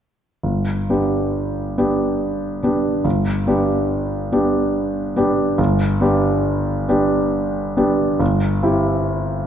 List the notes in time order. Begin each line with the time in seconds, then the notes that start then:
0.43 G1
0.90 B3 D4 G4
1.78 B3 D4 G4
2.63 B3 D4 G4
3.04 G1
3.47 B3 D4 G4
4.32 B3 D4 G4
5.16 B3 D4 G4
5.58 G1
6.01 B3 D4 G4
6.89 B3 D4 G4
7.77 B3 D4 G4
8.20 G1
8.63 C4 E4 G4